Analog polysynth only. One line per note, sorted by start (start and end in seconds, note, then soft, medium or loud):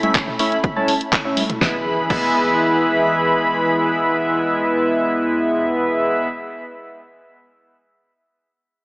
0.03 0.20 A3 medium
0.03 0.20 C#4 medium
0.03 0.20 E4 medium
0.03 0.20 C#5 medium
0.03 0.20 E5 medium
0.39 0.57 A3 medium
0.39 0.57 C#4 medium
0.39 0.57 E4 medium
0.39 0.57 C#5 medium
0.39 0.57 E5 medium
0.76 0.94 A3 medium
0.76 0.94 C#4 medium
0.76 0.94 E4 medium
0.76 0.94 C#5 medium
0.76 0.94 A5 loud
1.25 1.42 A3 medium
1.25 1.42 C#4 medium
1.25 1.42 E4 medium
1.25 1.42 C#5 medium
1.25 1.42 E5 medium
1.61 1.75 G#3 medium
1.61 1.75 B3 medium
1.61 1.75 E4 medium
1.61 1.75 B4 medium
1.61 1.75 E5 medium
2.10 6.28 G#3 medium
2.10 6.28 B3 medium
2.10 6.28 E4 medium
2.10 6.28 B4 medium
2.10 6.28 E5 medium